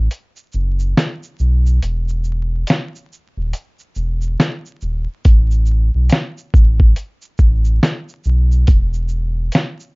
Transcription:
0.11 closed hi-hat medium
0.11 shaker medium
0.36 shaker soft
0.52 0.94 F#1 loud
0.52 shaker soft
0.79 shaker soft
0.97 snare loud
0.97 closed hi-hat medium
0.97 shaker medium
1.23 shaker soft
1.39 1.80 B1 medium
1.39 shaker soft
1.66 shaker medium
1.83 2.64 E1 loud
1.83 closed hi-hat medium
1.83 shaker medium
2.08 shaker soft
2.24 shaker soft
2.67 snare loud
2.67 closed hi-hat medium
2.67 shaker medium
2.95 shaker soft
3.13 shaker soft
3.37 3.53 D#1 medium
3.53 closed hi-hat medium
3.53 shaker medium
3.79 shaker soft
3.95 4.36 E1 medium
3.95 shaker soft
4.22 shaker soft
4.40 snare loud
4.40 closed hi-hat medium
4.40 shaker medium
4.66 shaker soft
4.81 5.07 D#1 medium
4.81 shaker soft
5.25 5.90 A1 loud
5.25 kick loud
5.25 closed hi-hat medium
5.25 shaker medium
5.51 shaker soft
5.66 shaker soft
5.95 6.10 B1 medium
6.09 snare loud
6.09 closed hi-hat medium
6.09 shaker medium
6.38 shaker soft
6.54 6.94 A1 medium
6.54 kick medium
6.54 shaker soft
6.80 kick medium
6.96 closed hi-hat medium
6.96 shaker medium
7.22 shaker soft
7.38 7.79 A1 loud
7.38 kick medium
7.38 shaker medium
7.65 shaker soft
7.83 snare loud
7.83 closed hi-hat medium
7.83 shaker medium
8.09 shaker soft
8.24 8.65 B1 medium
8.24 shaker soft
8.51 shaker medium
8.67 9.50 E1 loud
8.67 kick loud
8.67 closed hi-hat medium
8.67 shaker medium
8.94 shaker soft
9.08 shaker soft
9.52 snare loud
9.52 closed hi-hat medium
9.52 shaker medium
9.80 shaker soft

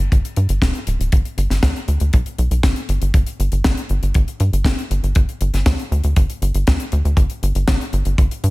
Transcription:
0.12 0.22 G1 loud
0.12 kick loud
0.12 closed hi-hat medium
0.25 closed hi-hat medium
0.36 0.47 G2 medium
0.36 closed hi-hat medium
0.49 0.60 G1 medium
0.49 closed hi-hat medium
0.62 0.72 D1 loud
0.62 kick loud
0.62 snare loud
0.62 closed hi-hat medium
0.75 closed hi-hat medium
0.87 0.98 D1 medium
0.87 closed hi-hat medium
1.00 1.10 D1 medium
1.00 closed hi-hat medium
1.12 1.23 G1 loud
1.12 kick loud
1.12 closed hi-hat loud
1.25 closed hi-hat soft
1.38 1.48 G1 loud
1.38 closed hi-hat medium
1.50 1.61 G1 medium
1.50 snare soft
1.50 closed hi-hat medium
1.63 1.73 D2 loud
1.63 kick loud
1.63 snare loud
1.63 closed hi-hat loud
1.76 closed hi-hat soft
1.88 1.98 D2 medium
1.88 closed hi-hat medium
2.00 2.11 D2 medium
2.00 closed hi-hat medium
2.13 2.24 B1 loud
2.13 kick loud
2.13 closed hi-hat loud
2.26 closed hi-hat medium
2.38 2.49 B1 loud
2.38 closed hi-hat medium
2.51 2.61 B1 medium
2.51 closed hi-hat medium
2.63 2.74 G1 loud
2.63 kick loud
2.63 snare loud
2.63 closed hi-hat medium
2.76 closed hi-hat medium
2.89 2.99 G1 medium
2.89 closed hi-hat medium
3.02 3.12 G1 medium
3.02 closed hi-hat medium
3.14 3.24 G1 loud
3.14 kick loud
3.14 closed hi-hat loud
3.26 closed hi-hat medium
3.39 3.50 G1 loud
3.39 closed hi-hat medium
3.52 3.62 G1 medium
3.52 closed hi-hat medium
3.64 3.75 G1 loud
3.64 kick loud
3.64 snare loud
3.64 closed hi-hat medium
3.77 closed hi-hat medium
3.89 4.00 G1 loud
3.89 closed hi-hat soft
4.03 4.13 G1 medium
4.03 closed hi-hat soft
4.14 4.25 G1 loud
4.14 kick loud
4.14 closed hi-hat loud
4.28 closed hi-hat medium
4.40 4.50 G2 medium
4.40 closed hi-hat medium
4.53 4.63 G1 medium
4.53 closed hi-hat medium
4.64 4.75 G1 loud
4.64 kick loud
4.64 snare loud
4.64 closed hi-hat medium
4.79 closed hi-hat medium
4.90 5.01 G1 medium
4.90 closed hi-hat medium
5.03 5.14 G1 medium
5.03 closed hi-hat medium
5.15 5.26 G1 loud
5.15 kick loud
5.15 closed hi-hat loud
5.29 closed hi-hat soft
5.41 5.51 G1 medium
5.41 closed hi-hat medium
5.54 5.64 G1 medium
5.54 snare soft
5.54 closed hi-hat medium
5.66 5.76 D2 loud
5.66 kick loud
5.66 snare loud
5.66 closed hi-hat medium
5.79 closed hi-hat soft
5.91 6.02 D2 loud
5.91 closed hi-hat soft
6.04 6.14 D2 medium
6.04 closed hi-hat soft
6.16 6.27 G1 loud
6.16 kick loud
6.16 closed hi-hat medium
6.30 closed hi-hat medium
6.42 6.52 G1 medium
6.42 closed hi-hat medium
6.54 6.65 G1 medium
6.54 closed hi-hat medium
6.67 6.78 D2 loud
6.67 kick loud
6.67 snare loud
6.67 closed hi-hat medium
6.80 closed hi-hat medium
6.92 7.03 D2 medium
6.92 closed hi-hat medium
7.05 7.15 D2 medium
7.05 closed hi-hat soft
7.17 7.28 G1 loud
7.17 kick loud
7.17 closed hi-hat medium
7.30 closed hi-hat soft
7.43 7.53 G1 medium
7.43 closed hi-hat medium
7.55 7.66 G1 medium
7.55 closed hi-hat medium
7.68 7.78 G1 loud
7.68 kick loud
7.68 snare loud
7.68 closed hi-hat loud
7.81 closed hi-hat soft
7.93 8.03 G1 medium
7.93 closed hi-hat soft
8.05 8.16 G1 medium
8.05 closed hi-hat soft
8.18 8.29 G1 loud
8.18 kick loud
8.18 closed hi-hat medium
8.31 closed hi-hat medium
8.44 8.50 G2 medium
8.44 closed hi-hat medium

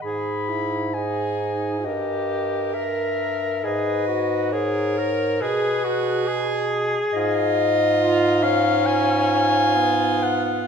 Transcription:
0.02 1.87 G#2 medium
0.02 0.91 G#4 medium
0.02 0.50 G#4 medium
0.02 0.95 B5 medium
0.49 0.96 E4 medium
0.94 1.87 D#4 medium
0.94 1.85 G#4 medium
0.94 1.86 G#5 medium
1.85 3.65 G2 medium
1.85 2.76 G4 medium
1.85 3.61 A#4 medium
1.85 2.73 D#5 medium
2.74 3.65 A#4 medium
2.74 3.66 E5 loud
3.64 5.41 G#2 medium
3.64 4.07 G#4 medium
3.64 4.54 B4 medium
3.64 4.54 D#5 medium
4.07 4.54 F#4 medium
4.52 4.99 G#4 medium
4.52 5.44 A#4 medium
4.52 5.42 C#5 loud
4.97 5.43 A#4 medium
5.41 6.97 B2 medium
5.41 5.86 G#4 medium
5.41 6.97 G#4 medium
5.41 6.70 B4 loud
5.84 6.28 F#4 medium
6.27 7.75 G#4 medium
7.13 10.67 G#2 loud
7.13 8.82 F4 medium
7.13 8.45 D#5 loud
8.00 8.44 F4 medium
8.43 9.78 C#4 medium
8.43 8.88 F5 loud
8.85 10.67 F4 medium
8.85 10.25 G#5 loud
9.76 10.67 B3 medium
10.23 10.67 F#5 loud

